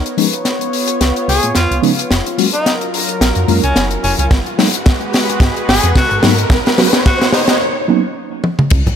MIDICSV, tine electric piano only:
0, 0, Header, 1, 2, 480
1, 0, Start_track
1, 0, Tempo, 550459
1, 1839, Time_signature, 4, 2, 24, 8
1, 7812, End_track
2, 0, Start_track
2, 0, Title_t, "Tine electric piano"
2, 0, Program_c, 0, 4
2, 152, Note_on_c, 0, 53, 78
2, 153, Note_on_c, 0, 56, 75
2, 154, Note_on_c, 0, 59, 73
2, 159, Note_on_c, 0, 61, 73
2, 160, Note_on_c, 0, 63, 84
2, 220, Note_off_c, 0, 53, 0
2, 221, Note_off_c, 0, 56, 0
2, 221, Note_off_c, 0, 59, 0
2, 224, Note_off_c, 0, 61, 0
2, 224, Note_off_c, 0, 63, 0
2, 1591, Note_on_c, 0, 53, 76
2, 1594, Note_on_c, 0, 56, 73
2, 1595, Note_on_c, 0, 59, 72
2, 1598, Note_on_c, 0, 63, 86
2, 1599, Note_on_c, 0, 61, 72
2, 1660, Note_off_c, 0, 53, 0
2, 1661, Note_off_c, 0, 56, 0
2, 1662, Note_off_c, 0, 59, 0
2, 1664, Note_off_c, 0, 61, 0
2, 1664, Note_off_c, 0, 63, 0
2, 2075, Note_on_c, 0, 54, 71
2, 2076, Note_on_c, 0, 56, 67
2, 2079, Note_on_c, 0, 58, 65
2, 2082, Note_on_c, 0, 61, 63
2, 2082, Note_on_c, 0, 66, 80
2, 2142, Note_off_c, 0, 54, 0
2, 2142, Note_off_c, 0, 56, 0
2, 2144, Note_off_c, 0, 58, 0
2, 2145, Note_off_c, 0, 61, 0
2, 2145, Note_off_c, 0, 66, 0
2, 3034, Note_on_c, 0, 54, 84
2, 3036, Note_on_c, 0, 56, 76
2, 3038, Note_on_c, 0, 58, 80
2, 3043, Note_on_c, 0, 61, 74
2, 3043, Note_on_c, 0, 65, 93
2, 3141, Note_off_c, 0, 54, 0
2, 3142, Note_off_c, 0, 56, 0
2, 3143, Note_off_c, 0, 58, 0
2, 3145, Note_off_c, 0, 61, 0
2, 3145, Note_off_c, 0, 65, 0
2, 3992, Note_on_c, 0, 54, 83
2, 3994, Note_on_c, 0, 56, 78
2, 3997, Note_on_c, 0, 58, 75
2, 3999, Note_on_c, 0, 59, 76
2, 4001, Note_on_c, 0, 63, 94
2, 4061, Note_off_c, 0, 54, 0
2, 4062, Note_off_c, 0, 56, 0
2, 4063, Note_off_c, 0, 58, 0
2, 4064, Note_off_c, 0, 59, 0
2, 4065, Note_off_c, 0, 63, 0
2, 5429, Note_on_c, 0, 54, 83
2, 5430, Note_on_c, 0, 56, 78
2, 5432, Note_on_c, 0, 58, 74
2, 5436, Note_on_c, 0, 59, 80
2, 5437, Note_on_c, 0, 63, 93
2, 5499, Note_off_c, 0, 54, 0
2, 5500, Note_off_c, 0, 56, 0
2, 5501, Note_off_c, 0, 58, 0
2, 5502, Note_off_c, 0, 59, 0
2, 5503, Note_off_c, 0, 63, 0
2, 5907, Note_on_c, 0, 54, 78
2, 5910, Note_on_c, 0, 58, 72
2, 5912, Note_on_c, 0, 59, 69
2, 5915, Note_on_c, 0, 61, 73
2, 5916, Note_on_c, 0, 66, 85
2, 5978, Note_off_c, 0, 54, 0
2, 5980, Note_off_c, 0, 58, 0
2, 5981, Note_off_c, 0, 59, 0
2, 5982, Note_off_c, 0, 61, 0
2, 5982, Note_off_c, 0, 66, 0
2, 6870, Note_on_c, 0, 54, 90
2, 6873, Note_on_c, 0, 58, 84
2, 6876, Note_on_c, 0, 59, 82
2, 6877, Note_on_c, 0, 61, 80
2, 6879, Note_on_c, 0, 63, 103
2, 6979, Note_off_c, 0, 54, 0
2, 6980, Note_off_c, 0, 58, 0
2, 6982, Note_off_c, 0, 59, 0
2, 6982, Note_off_c, 0, 61, 0
2, 6983, Note_off_c, 0, 63, 0
2, 7812, End_track
0, 0, End_of_file